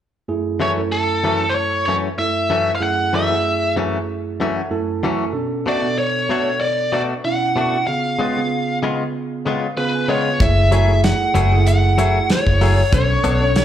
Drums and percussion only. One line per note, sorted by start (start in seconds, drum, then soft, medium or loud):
10.40 kick loud
10.40 closed hi-hat medium
10.72 closed hi-hat medium
11.04 snare loud
11.04 closed hi-hat medium
11.35 closed hi-hat medium
11.67 closed hi-hat medium
11.98 closed hi-hat medium
12.30 snare medium
12.30 closed hi-hat medium
12.47 kick medium
12.61 open hi-hat medium
12.93 kick loud
12.93 closed hi-hat medium
13.24 closed hi-hat medium
13.56 snare loud
13.56 closed hi-hat medium